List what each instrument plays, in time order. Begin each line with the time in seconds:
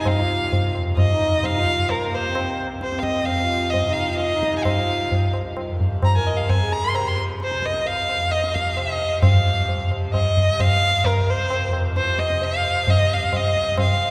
Already playing: tanpura C2 F2 C3, harmonium D#4
0.01 violin G#5
0.05 violin F5, tabla na, tabla ge
0.14 tanpura C2
0.18 harmonium F4
0.52 tabla tin, tabla ge
0.75 tanpura F2, tabla na
0.97 violin D#5, tabla na, tabla ge
1.11 harmonium D#4
1.21 tabla ge
1.37 tanpura C3
1.44 violin F5, tabla na, tabla ge
1.56 harmonium F4
1.66 tabla ge
1.89 violin A#4, tabla na, tabla ge
1.98 tanpura C3
2.03 harmonium A#3
2.14 violin C5
2.25 harmonium C4
2.35 tabla na
2.60 tanpura C2
2.81 violin C5, tabla te
2.92 harmonium C4, tabla te
2.99 violin F5
3.03 violin D#5, tabla ke
3.16 tabla te
3.21 tanpura F2, violin F5
3.27 tabla tin
3.41 harmonium F4
3.70 violin D#5, tabla tin, tabla ge
3.84 tanpura C3, harmonium D#4
3.93 violin F5
4.09 harmonium F4, violin F5
4.15 violin D#5
4.20 tabla te
4.32 harmonium D#4, tabla te
4.43 tanpura C3, tabla ke
4.54 violin G#5, tabla te
4.64 violin F5, tabla na, tabla ge
4.77 harmonium F4
5.07 tanpura C2
5.12 tabla tin, tabla ge
5.33 tabla na
5.57 tabla na, tabla ge
5.68 tanpura F2
5.80 tabla ge
6.03 violin A#5, tabla na, tabla ge
6.12 harmonium A#4, violin G#5 A#5
6.27 tanpura C3, violin D#5
6.37 violin F5
6.49 violin G#5, tabla na, tabla ge
6.60 harmonium G#4
6.72 violin A#5, tabla te
6.84 harmonium A#4, violin C6
6.90 tanpura C3
6.95 violin A#5, tabla na
7.06 harmonium A#4, violin C6
7.19 harmonium C5
7.40 violin C5, tabla te
7.51 tanpura C2, tabla te
7.62 violin D#5, tabla ke
7.74 tabla te
7.86 violin F5, tabla tin
8.09 tabla na
8.15 tanpura F2
8.31 violin D#5, tabla te
8.44 tabla te
8.54 violin F5, tabla ke
8.66 tabla te
8.77 tanpura C3, violin E5, tabla na
8.92 violin D#5
9.22 tanpura F2, violin F5, tabla na, tabla ge
9.69 tabla tin, tabla ge
9.86 tanpura C3
9.91 tabla na
10.13 violin D#5, tabla na, tabla ge
10.37 tabla ge
10.46 tanpura C3
10.60 violin F5, tabla na, tabla ge
11.04 tanpura C2, violin A#4, tabla na, tabla ge
11.30 violin C5
11.50 tabla na
11.67 tanpura F2
11.73 tabla na
11.96 violin C5, tabla te
12.08 tabla te
12.19 violin D#5, tabla ke
12.30 tanpura C3, tabla te
12.41 violin F5, tabla tin
12.64 tabla na
12.87 tanpura C3, violin D#5, tabla tin, tabla ge
13.13 violin F5
13.33 violin D#5, tabla na, tabla ge
13.50 tanpura C2
13.55 tabla ge
13.77 violin F5, tabla na, tabla ge